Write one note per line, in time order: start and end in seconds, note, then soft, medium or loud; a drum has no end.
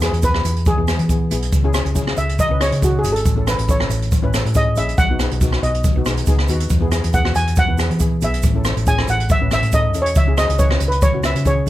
0.00 0.15 B3 medium
0.00 0.15 E4 medium
0.00 0.25 G#4 medium
0.00 0.15 B4 medium
0.00 cross-stick medium
0.00 closed hi-hat medium
0.00 shaker medium
0.12 0.41 E2 medium
0.12 closed hi-hat medium
0.22 0.30 B3 medium
0.22 0.30 E4 medium
0.22 0.30 B4 medium
0.22 0.68 B4 loud
0.22 kick medium
0.22 closed hi-hat medium
0.22 shaker medium
0.34 0.60 B3 medium
0.34 0.60 E4 medium
0.34 0.60 G#4 medium
0.34 cross-stick medium
0.45 0.74 E2 medium
0.45 closed hi-hat medium
0.45 shaker medium
0.56 closed hi-hat medium
0.66 1.71 G#4 medium
0.66 kick loud
0.66 closed hi-hat medium
0.66 shaker medium
0.77 0.97 E2 medium
0.77 0.84 B3 medium
0.77 0.84 E4 medium
0.77 0.84 G#4 medium
0.87 1.01 B3 medium
0.87 1.02 E4 medium
0.87 1.02 G#4 medium
0.87 cross-stick medium
0.87 closed hi-hat medium
0.87 shaker medium
0.99 1.32 E3 medium
0.99 closed hi-hat medium
1.09 1.23 B3 medium
1.09 1.23 E4 medium
1.09 1.23 G#4 medium
1.09 kick medium
1.09 closed hi-hat medium
1.09 shaker medium
1.30 1.50 B1 medium
1.30 1.51 B3 medium
1.30 1.51 E4 medium
1.30 1.51 G#4 medium
1.30 closed hi-hat medium
1.30 shaker medium
1.42 closed hi-hat medium
1.52 1.82 C#2 loud
1.52 kick loud
1.52 closed hi-hat medium
1.52 shaker medium
1.64 1.70 C#4 medium
1.64 1.70 E4 medium
1.64 1.71 G#4 loud
1.73 1.87 C#4 medium
1.73 1.87 E4 medium
1.73 1.88 G#4 medium
1.73 cross-stick medium
1.73 closed hi-hat medium
1.73 shaker medium
1.85 2.13 C#2 medium
1.85 closed hi-hat medium
1.95 2.02 C#4 medium
1.95 2.02 E4 medium
1.95 2.03 G#4 medium
1.95 kick medium
1.95 closed hi-hat medium
1.95 shaker medium
2.07 2.33 C#4 medium
2.07 2.33 E4 medium
2.07 2.33 G#4 medium
2.07 cross-stick medium
2.17 2.46 C#2 medium
2.17 2.40 E5 medium
2.17 closed hi-hat medium
2.17 shaker medium
2.29 closed hi-hat soft
2.39 2.62 D#5 loud
2.39 kick loud
2.39 closed hi-hat medium
2.39 shaker loud
2.50 2.70 C#2 medium
2.50 2.56 C#4 medium
2.50 2.57 E4 medium
2.50 2.57 B4 medium
2.60 2.74 C#4 medium
2.60 2.74 E4 medium
2.60 2.74 G#4 medium
2.60 2.84 C#5 medium
2.60 cross-stick medium
2.60 closed hi-hat medium
2.60 shaker medium
2.72 3.05 C#3 medium
2.72 closed hi-hat medium
2.81 2.95 C#4 medium
2.81 2.96 E4 medium
2.81 2.98 F#4 medium
2.81 2.96 G#4 medium
2.81 kick medium
2.81 closed hi-hat medium
2.81 shaker loud
2.99 3.11 G#4 medium
3.04 3.23 G#1 medium
3.04 3.23 C#4 medium
3.04 3.24 E4 medium
3.04 3.24 G#4 medium
3.04 closed hi-hat medium
3.04 shaker medium
3.12 3.49 A4 medium
3.12 closed hi-hat medium
3.25 3.55 A1 loud
3.25 kick loud
3.25 closed hi-hat medium
3.25 shaker loud
3.36 3.43 C#4 medium
3.36 3.43 E4 medium
3.36 3.43 A4 medium
3.47 3.60 C#4 medium
3.47 3.61 E4 medium
3.47 3.61 A4 medium
3.47 3.68 B4 medium
3.47 cross-stick medium
3.47 closed hi-hat medium
3.47 shaker medium
3.58 3.86 A1 medium
3.58 closed hi-hat medium
3.68 3.75 C#4 medium
3.68 3.76 E4 medium
3.68 3.76 A4 medium
3.68 3.90 C#5 medium
3.68 kick medium
3.68 closed hi-hat medium
3.68 shaker loud
3.80 4.06 C#4 medium
3.80 4.06 E4 medium
3.80 4.06 A4 medium
3.80 cross-stick medium
3.89 4.19 A1 medium
3.89 closed hi-hat medium
3.89 shaker medium
4.02 closed hi-hat medium
4.12 kick loud
4.12 closed hi-hat medium
4.12 shaker loud
4.23 4.42 A1 medium
4.23 4.29 C#4 medium
4.23 4.29 E4 medium
4.23 4.30 B4 loud
4.33 4.47 C#4 medium
4.33 4.47 E4 medium
4.33 4.48 A4 loud
4.33 cross-stick medium
4.33 closed hi-hat medium
4.33 shaker medium
4.44 4.78 A2 medium
4.44 closed hi-hat medium
4.54 4.68 C#4 medium
4.54 4.69 E4 medium
4.54 4.69 G#4 medium
4.54 4.78 D#5 medium
4.54 kick medium
4.54 closed hi-hat medium
4.54 shaker loud
4.76 4.96 A#1 medium
4.76 4.97 C#4 medium
4.76 4.97 E4 medium
4.76 4.97 G#4 medium
4.76 4.99 E5 medium
4.76 closed hi-hat medium
4.76 shaker medium
4.88 closed hi-hat medium
4.98 5.27 B1 medium
4.98 5.65 F#5 loud
4.98 kick loud
4.98 closed hi-hat medium
4.98 shaker medium
5.10 5.16 B3 medium
5.10 5.16 D#4 medium
5.10 5.17 F#4 medium
5.19 5.33 B3 medium
5.19 5.34 D#4 medium
5.19 5.34 G#4 medium
5.19 cross-stick medium
5.19 closed hi-hat medium
5.19 shaker medium
5.31 5.60 B1 medium
5.31 closed hi-hat medium
5.41 5.48 B3 medium
5.41 5.48 D#4 medium
5.41 5.49 F#4 medium
5.41 kick loud
5.41 closed hi-hat medium
5.41 shaker medium
5.52 5.79 B3 medium
5.52 5.79 D#4 medium
5.52 5.79 F#4 medium
5.52 cross-stick medium
5.63 5.92 B1 medium
5.63 6.03 D#5 medium
5.63 closed hi-hat medium
5.74 closed hi-hat medium
5.84 kick loud
5.84 closed hi-hat medium
5.84 shaker loud
5.95 6.05 B1 medium
5.95 6.02 B3 medium
5.95 6.02 D#4 medium
5.95 6.03 F#4 medium
6.05 6.26 B1 medium
6.05 6.20 B3 medium
6.05 6.20 D#4 medium
6.05 6.20 G#4 medium
6.05 cross-stick medium
6.05 closed hi-hat medium
6.05 shaker medium
6.17 closed hi-hat medium
6.26 6.47 C#2 medium
6.26 6.41 B3 medium
6.26 6.41 D#4 medium
6.26 6.42 G#4 loud
6.26 kick loud
6.26 closed hi-hat medium
6.26 shaker medium
6.39 cross-stick medium
6.48 6.69 D#2 medium
6.48 6.69 B3 medium
6.48 6.69 D#4 medium
6.48 6.69 F#4 medium
6.48 closed hi-hat medium
6.48 shaker medium
6.60 closed hi-hat medium
6.70 7.00 E2 loud
6.70 kick loud
6.70 closed hi-hat medium
6.70 shaker medium
6.81 6.88 B3 medium
6.81 6.88 E4 medium
6.81 6.88 G#4 medium
6.91 7.05 B3 medium
6.91 7.06 E4 medium
6.91 7.06 G#4 medium
6.91 cross-stick medium
6.91 closed hi-hat medium
6.91 shaker medium
7.04 7.32 E2 medium
7.04 closed hi-hat medium
7.13 7.20 B3 medium
7.13 7.21 E4 medium
7.13 7.21 G#4 medium
7.13 7.34 F#5 medium
7.13 kick loud
7.13 closed hi-hat medium
7.13 shaker medium
7.24 7.50 B3 medium
7.24 7.50 E4 medium
7.24 7.51 F#4 medium
7.24 cross-stick medium
7.35 7.65 E2 medium
7.35 7.58 G#5 medium
7.35 closed hi-hat medium
7.35 shaker medium
7.47 closed hi-hat medium
7.56 8.25 F#5 loud
7.56 kick loud
7.56 closed hi-hat medium
7.56 shaker medium
7.67 7.88 E2 medium
7.67 7.74 B3 medium
7.67 7.75 E4 medium
7.67 7.75 B4 medium
7.77 7.92 B3 medium
7.77 7.92 E4 medium
7.77 7.92 G#4 medium
7.77 cross-stick medium
7.77 closed hi-hat medium
7.77 shaker medium
7.90 8.24 E3 medium
7.90 closed hi-hat medium
7.99 8.13 B3 medium
7.99 8.14 E4 medium
7.99 8.14 G#4 medium
7.99 kick medium
7.99 closed hi-hat medium
7.99 shaker medium
8.21 8.41 B1 medium
8.21 8.41 B3 medium
8.21 8.42 E4 medium
8.21 8.42 G#4 medium
8.21 8.63 E5 medium
8.21 closed hi-hat medium
8.21 shaker medium
8.34 closed hi-hat medium
8.43 8.73 A1 loud
8.43 kick loud
8.43 closed hi-hat medium
8.43 shaker loud
8.55 8.61 C#4 medium
8.55 8.61 E4 medium
8.55 8.62 A4 medium
8.64 8.79 C#4 medium
8.64 8.79 E4 medium
8.64 8.79 A4 medium
8.64 cross-stick medium
8.64 closed hi-hat medium
8.64 shaker medium
8.77 9.05 A1 medium
8.77 closed hi-hat medium
8.86 8.94 C#4 medium
8.86 8.94 E4 medium
8.86 8.94 G#4 medium
8.86 9.10 G#5 loud
8.86 kick medium
8.86 closed hi-hat medium
8.86 shaker medium
8.98 9.24 C#4 medium
8.98 9.24 E4 medium
8.98 9.25 A4 medium
8.98 cross-stick medium
9.08 9.37 A1 medium
9.08 9.31 F#5 loud
9.08 closed hi-hat medium
9.08 shaker medium
9.20 closed hi-hat medium
9.29 9.52 E5 loud
9.29 kick loud
9.29 closed hi-hat medium
9.29 shaker medium
9.41 9.60 A1 medium
9.41 9.47 C#4 medium
9.41 9.48 E4 medium
9.41 9.48 B4 medium
9.51 9.65 C#4 medium
9.51 9.65 E4 medium
9.51 9.66 A4 medium
9.51 9.75 E5 loud
9.51 cross-stick medium
9.51 closed hi-hat medium
9.51 shaker medium
9.63 9.94 A2 medium
9.63 closed hi-hat medium
9.72 9.86 C#4 medium
9.72 9.87 E4 medium
9.72 9.87 A4 medium
9.72 10.03 D#5 loud
9.72 kick medium
9.72 closed hi-hat medium
9.72 shaker loud
9.94 10.13 E2 medium
9.94 10.14 C#4 medium
9.94 10.15 E4 medium
9.94 10.15 A4 medium
9.94 closed hi-hat medium
9.94 shaker medium
10.02 10.17 C#5 loud
10.02 closed hi-hat medium
10.15 10.45 C#2 loud
10.15 10.39 E5 medium
10.15 kick loud
10.15 closed hi-hat medium
10.15 shaker loud
10.27 10.33 C#4 medium
10.27 10.34 E4 medium
10.27 10.34 G#4 medium
10.37 10.51 C#4 medium
10.37 10.52 E4 medium
10.37 10.52 G#4 medium
10.37 10.60 D#5 medium
10.37 cross-stick medium
10.37 closed hi-hat medium
10.37 shaker medium
10.49 10.77 C#2 loud
10.49 closed hi-hat medium
10.59 10.66 C#4 medium
10.59 10.66 E4 medium
10.59 10.67 B4 medium
10.59 10.86 C#5 medium
10.59 kick medium
10.59 closed hi-hat medium
10.59 shaker medium
10.70 10.96 C#4 medium
10.70 10.97 E4 medium
10.70 10.97 B4 medium
10.70 cross-stick medium
10.80 11.10 C#2 loud
10.80 closed hi-hat medium
10.80 shaker medium
10.88 11.02 B4 medium
10.88 closed hi-hat medium
11.02 11.25 C#5 loud
11.02 kick loud
11.02 closed hi-hat medium
11.02 shaker loud
11.13 11.32 C#2 loud
11.13 11.20 C#4 medium
11.13 11.20 E4 medium
11.13 11.20 F#4 medium
11.23 11.37 C#4 medium
11.23 11.37 E4 medium
11.23 11.38 B4 medium
11.23 11.47 E5 medium
11.23 cross-stick medium
11.23 closed hi-hat medium
11.23 shaker medium
11.35 11.68 C#3 medium
11.35 closed hi-hat medium
11.45 11.59 C#4 medium
11.45 11.59 E4 medium
11.45 11.59 G#4 medium
11.45 11.69 C#5 medium
11.45 kick medium
11.45 closed hi-hat medium
11.45 shaker medium
11.66 11.69 C#4 medium